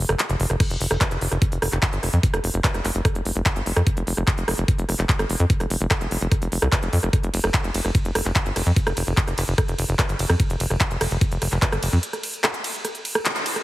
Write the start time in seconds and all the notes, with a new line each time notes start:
0.09 F1, cross-stick, closed hi-hat
0.19 clap, closed hi-hat
0.29 F1, closed hi-hat
0.40 F1, open hi-hat
0.50 F1, cross-stick, closed hi-hat
0.60 kick, cross-stick, closed hi-hat, crash
0.70 F1, closed hi-hat
0.80 F1, open hi-hat
0.91 F1, cross-stick, closed hi-hat
1.01 kick, clap, closed hi-hat
1.11 F1, closed hi-hat
1.21 F1, open hi-hat
1.32 F1, cross-stick, closed hi-hat
1.42 kick, closed hi-hat
1.52 F1, closed hi-hat
1.62 F1, cross-stick, open hi-hat
1.72 F1, clap, closed hi-hat
1.83 kick, clap, closed hi-hat
1.93 G1, closed hi-hat
2.03 F1, cross-stick, open hi-hat
2.13 F2, closed hi-hat
2.23 kick, closed hi-hat
2.34 F1, cross-stick, closed hi-hat
2.44 F1, open hi-hat
2.54 F1, closed hi-hat
2.64 kick, clap, closed hi-hat
2.74 F1, cross-stick, closed hi-hat
2.85 F1, clap, open hi-hat
2.95 F1, closed hi-hat
3.05 kick, cross-stick, closed hi-hat
3.15 F1, closed hi-hat
3.25 F1, open hi-hat
3.36 F1, closed hi-hat
3.46 kick, cross-stick, clap, closed hi-hat
3.56 G1, closed hi-hat
3.66 F1, open hi-hat
3.76 F2, cross-stick, closed hi-hat
3.87 kick, closed hi-hat
3.97 F1, closed hi-hat
4.07 F1, open hi-hat
4.17 F1, cross-stick, closed hi-hat
4.27 kick, clap, closed hi-hat
4.38 F1, closed hi-hat
4.48 F1, cross-stick, open hi-hat
4.58 F1, closed hi-hat
4.68 kick, closed hi-hat
4.78 F1, closed hi-hat
4.89 F1, cross-stick, open hi-hat
4.99 F1, clap, closed hi-hat
5.09 kick, clap, closed hi-hat
5.19 G1, cross-stick, closed hi-hat
5.29 F1, open hi-hat
5.40 F2, closed hi-hat
5.50 kick, closed hi-hat
5.60 F1, cross-stick, closed hi-hat
5.70 F1, open hi-hat
5.81 F1, closed hi-hat
5.91 kick, cross-stick, clap, closed hi-hat
6.01 F1, closed hi-hat
6.11 F1, open hi-hat
6.21 F1, closed hi-hat
6.32 kick, cross-stick, closed hi-hat
6.42 F1, closed hi-hat
6.52 F1, open hi-hat
6.62 C2, cross-stick, closed hi-hat
6.72 kick, clap, closed hi-hat
6.83 F1, closed hi-hat
6.93 F2, open hi-hat
7.03 F1, cross-stick, closed hi-hat
7.13 kick, cross-stick, closed hi-hat
7.23 F1, closed hi-hat
7.34 F1, open hi-hat, ride
7.44 F1, cross-stick, closed hi-hat
7.54 kick, clap, closed hi-hat
7.64 F1, closed hi-hat
7.74 F1, open hi-hat, ride
7.85 F1, cross-stick, closed hi-hat
7.95 kick, closed hi-hat
8.05 F1, closed hi-hat
8.15 F1, cross-stick, open hi-hat, ride
8.25 F1, clap, closed hi-hat
8.36 kick, clap, closed hi-hat
8.46 G1, closed hi-hat
8.56 F1, cross-stick, open hi-hat, ride
8.66 F2, closed hi-hat
8.76 kick, closed hi-hat
8.87 F1, cross-stick, closed hi-hat
8.97 F1, open hi-hat, ride
9.07 F1, closed hi-hat
9.17 kick, clap, closed hi-hat
9.27 F1, cross-stick, closed hi-hat
9.38 F1, clap, open hi-hat, ride
9.48 F1, closed hi-hat
9.58 kick, cross-stick, closed hi-hat
9.68 F1, closed hi-hat
9.78 F1, open hi-hat, ride
9.89 F1, closed hi-hat
9.99 kick, cross-stick, clap, closed hi-hat
10.09 G1, closed hi-hat
10.19 F1, open hi-hat, ride
10.30 F2, cross-stick, closed hi-hat
10.40 kick, closed hi-hat
10.50 F1, closed hi-hat
10.60 F1, open hi-hat, ride
10.70 F1, cross-stick, closed hi-hat
10.81 kick, clap, closed hi-hat
10.91 F1, closed hi-hat
11.01 F1, cross-stick, open hi-hat, ride
11.11 F1, closed hi-hat
11.21 kick, closed hi-hat
11.31 F1, closed hi-hat
11.42 F1, cross-stick, open hi-hat, ride
11.52 F1, clap, closed hi-hat
11.62 kick, clap, closed hi-hat
11.72 G1, cross-stick, closed hi-hat
11.83 F1, open hi-hat, ride
11.93 F2, closed hi-hat
12.03 closed hi-hat
12.13 cross-stick, closed hi-hat
12.23 open hi-hat, ride
12.34 closed hi-hat
12.44 cross-stick, clap, closed hi-hat
12.54 closed hi-hat
12.64 open hi-hat, ride
12.74 closed hi-hat
12.85 cross-stick, closed hi-hat
12.95 closed hi-hat
13.05 open hi-hat, ride
13.15 cross-stick, closed hi-hat
13.25 clap, closed hi-hat
13.36 closed hi-hat
13.46 open hi-hat, ride
13.56 cross-stick, closed hi-hat